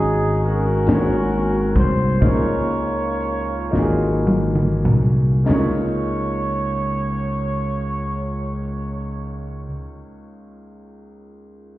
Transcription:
0.00 0.83 G#1 medium
0.00 0.83 G#2 soft
0.00 0.44 C#4 medium
0.00 0.45 C#4 medium
0.00 0.84 D#4 medium
0.00 0.45 F#4 medium
0.00 0.41 G#4 medium
0.00 0.46 G#4 medium
0.00 0.46 D#5 medium
0.00 closed hi-hat soft
0.45 1.73 C#4 medium
0.45 1.73 F#4 medium
0.45 1.77 A#4 loud
0.45 closed hi-hat soft
0.86 1.72 G#1 medium
0.86 2.18 G#2 medium
0.86 1.77 A#3 medium
0.86 1.78 F#4 soft
0.86 1.78 G#4 soft
0.86 0.94 C5 medium
0.86 snare loud
0.86 closed hi-hat medium
0.94 1.81 C#5 medium
1.31 closed hi-hat soft
1.76 2.19 C2 medium
1.76 2.23 C5 medium
1.76 kick medium
1.76 closed hi-hat soft
2.21 3.69 C#2 loud
2.21 3.69 C#3 medium
2.21 3.22 A#3 medium
2.21 3.22 D#4 medium
2.21 3.22 F4 medium
2.21 4.24 F4 medium
2.21 4.24 A#4 medium
2.21 2.30 C5 medium
2.21 4.28 C#5 medium
2.21 kick loud
2.21 closed hi-hat medium
2.29 3.26 C#5 medium
2.70 closed hi-hat soft
3.20 closed hi-hat soft
3.71 4.86 G#1 medium
3.71 4.88 A#3 medium
3.71 4.88 D#4 medium
3.71 4.88 F4 medium
3.71 3.81 F#4 medium
3.71 snare soft
3.78 4.91 G#4 medium
4.27 high tom medium
4.55 mid tom medium
4.85 5.45 C2 medium
4.85 mid tom medium
5.44 9.64 C#2 medium
5.44 9.61 A#3 medium
5.44 9.63 D#4 medium
5.44 open hi-hat medium
5.48 9.66 C#2 medium
5.48 9.66 F4 medium
5.48 9.66 C#5 medium
5.48 9.67 C#5 medium
5.48 snare medium

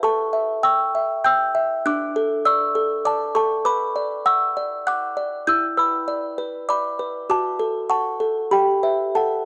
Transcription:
0.03 1.81 A4 medium
0.03 0.60 A5 medium
0.03 0.61 C#6 loud
0.33 0.82 E5 medium
0.63 1.12 G5 medium
0.63 1.21 C#6 medium
0.63 1.22 E6 loud
0.95 1.43 E5 medium
1.24 1.73 G5 medium
1.24 1.82 E6 medium
1.24 1.83 G6 loud
1.55 1.85 E5 medium
1.86 3.61 D4 medium
1.86 2.42 D6 loud
1.86 2.43 F#6 loud
2.16 2.63 A4 medium
2.45 2.93 D5 medium
2.45 3.01 C#6 loud
2.45 3.02 E6 loud
2.75 3.23 A4 medium
3.05 3.53 D5 medium
3.05 3.34 A5 medium
3.05 3.34 D6 loud
3.35 3.65 A4 medium
3.35 3.64 A5 medium
3.35 3.64 C#6 loud
3.65 5.43 B4 medium
3.65 4.22 B5 medium
3.65 4.23 D6 loud
3.96 4.44 D5 medium
4.26 4.74 F#5 medium
4.26 4.83 C#6 loud
4.26 4.84 E6 loud
4.57 5.05 D5 medium
4.87 5.35 F#5 medium
4.87 5.44 D6 loud
4.87 5.45 F#6 loud
5.17 5.47 D5 medium
5.47 7.26 E4 medium
5.47 5.76 E6 loud
5.47 5.76 G6 loud
5.77 6.26 B4 medium
5.77 6.65 B5 medium
5.77 6.65 E6 loud
6.08 6.56 D5 medium
6.38 6.87 B4 medium
6.69 7.17 D5 medium
6.69 6.97 B5 medium
6.69 6.98 D6 loud
6.99 7.29 B4 medium
7.30 8.49 F#4 medium
7.30 7.87 A5 medium
7.30 7.88 D6 loud
7.59 8.09 A4 medium
7.90 8.39 F#5 medium
7.90 8.48 A5 medium
7.90 8.49 C#6 loud
8.20 8.52 A4 medium
8.51 9.14 G4 medium
8.51 9.12 G5 medium
8.51 9.13 B5 medium
8.83 9.12 B4 soft
8.83 9.13 E5 soft
9.15 9.45 A4 medium
9.15 9.45 F#5 medium
9.15 9.45 A5 medium

